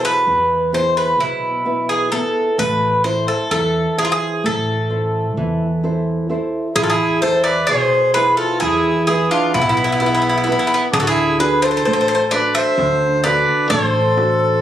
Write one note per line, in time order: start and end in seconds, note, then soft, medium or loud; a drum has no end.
0.00 0.24 B2 medium
0.00 0.55 B3 soft
0.00 0.55 E4 soft
0.00 0.55 G#4 medium
0.05 0.70 B4 medium
0.27 1.19 E2 medium
0.27 1.17 E3 medium
0.72 1.47 B3 soft
0.72 1.47 E4 soft
0.72 1.47 G#4 soft
0.72 0.97 C5 medium
0.97 1.20 B4 medium
1.18 2.17 B1 medium
1.18 2.09 B2 medium
1.18 1.85 E4 medium
1.65 2.11 B3 soft
1.65 2.11 E4 soft
1.65 2.40 B4 medium
1.89 2.11 G#4 medium
2.12 2.49 B3 soft
2.12 2.49 E4 soft
2.12 2.59 A4 medium
2.58 3.24 A1 medium
2.58 3.48 A3 medium
2.58 3.02 B4 medium
3.04 3.79 E4 soft
3.04 3.79 A4 soft
3.04 3.28 C5 medium
3.04 3.79 C5 medium
3.28 3.50 A4 medium
3.51 3.84 E2 medium
3.51 4.41 E3 medium
3.51 3.98 A4 medium
3.97 4.72 E4 soft
3.97 4.05 G#4 medium
3.97 4.72 C5 soft
4.05 4.12 F4 medium
4.12 4.42 G#4 medium
4.44 5.37 A1 medium
4.44 5.34 A3 medium
4.44 5.80 A4 medium
4.90 5.64 E4 soft
4.90 5.65 A4 soft
4.90 5.65 C5 soft
5.37 6.34 E2 medium
5.37 6.27 E3 medium
5.83 6.28 E4 soft
5.83 6.29 A4 soft
5.83 6.29 C5 medium
6.29 6.67 E4 soft
6.29 6.67 A4 soft
6.29 6.67 C5 soft
6.76 7.69 E2 medium
6.76 7.66 E3 medium
6.76 6.83 E4 medium
6.76 6.82 G#4 medium
6.76 darbuka dum medium
6.83 6.89 F4 medium
6.83 6.89 A4 medium
6.89 7.20 E4 medium
6.89 7.20 G#4 medium
7.22 7.97 E4 soft
7.22 7.97 G#4 soft
7.22 7.44 A4 medium
7.22 7.43 C5 medium
7.22 darbuka tek medium
7.44 7.67 B4 medium
7.44 7.66 D5 medium
7.67 8.34 B1 medium
7.67 8.59 B2 medium
7.67 8.11 G#4 medium
7.67 8.11 C5 medium
7.67 darbuka tek medium
7.93 darbuka tek soft
8.12 8.89 E4 soft
8.12 8.35 G#4 medium
8.12 8.90 G#4 soft
8.12 8.36 B4 medium
8.12 darbuka tek medium
8.17 8.90 B4 medium
8.36 8.58 F4 medium
8.36 8.59 A4 medium
8.59 9.27 E2 medium
8.59 9.51 E3 medium
8.59 9.03 E4 medium
8.59 9.06 G#4 medium
8.59 darbuka tek medium
9.06 9.29 E4 medium
9.06 9.82 E4 soft
9.06 9.29 G#4 medium
9.06 9.82 G#4 soft
9.06 9.82 B4 soft
9.06 darbuka tek medium
9.29 9.52 D4 medium
9.29 9.52 F4 medium
9.52 10.51 B1 medium
9.52 10.44 B2 medium
9.52 10.88 B3 medium
9.52 9.60 E4 medium
9.52 darbuka dum medium
9.61 9.68 E4 medium
9.69 9.76 E4 medium
9.77 9.83 E4 medium
9.77 darbuka tek soft
9.84 9.91 E4 medium
9.92 9.99 E4 medium
10.00 10.05 E4 medium
10.00 10.47 E4 soft
10.00 10.47 G#4 soft
10.00 10.47 B4 medium
10.00 darbuka tek medium
10.06 10.13 E4 medium
10.14 10.20 E4 medium
10.22 10.28 E4 medium
10.29 10.36 E4 medium
10.38 10.43 E4 soft
10.44 10.51 E4 medium
10.44 darbuka tek medium
10.48 10.85 E4 medium
10.48 10.58 E4 medium
10.48 10.85 G#4 soft
10.48 10.85 B4 medium
10.59 10.66 E4 medium
10.67 10.73 E4 medium
10.74 10.82 E4 medium
10.92 11.85 D2 medium
10.92 11.83 D3 medium
10.92 10.99 D4 medium
10.92 10.99 G#4 medium
10.92 darbuka dum medium
11.00 11.06 F#4 medium
11.00 11.07 A4 medium
11.07 11.37 E4 medium
11.07 11.37 G#4 loud
11.39 12.13 D4 medium
11.39 12.14 F#4 soft
11.39 11.61 G#4 medium
11.39 12.14 A4 medium
11.39 11.61 B4 medium
11.39 darbuka tek medium
11.62 12.28 A4 medium
11.62 11.69 C5 medium
11.71 11.76 C5 medium
11.77 11.84 C5 medium
11.85 12.50 A1 medium
11.85 12.75 A3 medium
11.85 11.92 C5 medium
11.85 darbuka tek medium
11.93 11.99 C5 medium
12.01 12.07 C5 medium
12.08 12.14 C5 medium
12.08 darbuka tek soft
12.15 12.22 C5 medium
12.31 13.06 D4 soft
12.31 13.06 F#4 soft
12.31 13.06 A4 medium
12.31 12.54 B4 medium
12.31 12.54 D5 loud
12.31 darbuka tek medium
12.55 13.21 C5 loud
12.55 13.20 E5 loud
12.78 13.42 D2 medium
12.78 13.68 D3 medium
12.78 darbuka tek medium
13.24 13.98 D4 soft
13.24 13.98 F#4 soft
13.24 13.98 A4 medium
13.24 13.67 B4 medium
13.24 13.67 D5 medium
13.24 darbuka tek medium
13.70 14.61 A1 medium
13.70 14.60 A3 medium
13.70 14.61 A4 medium
13.70 14.61 C5 medium
13.70 darbuka dum medium
13.95 darbuka tek soft
14.16 14.61 D4 medium
14.16 14.61 F#4 soft
14.16 14.61 A4 medium
14.16 darbuka tek medium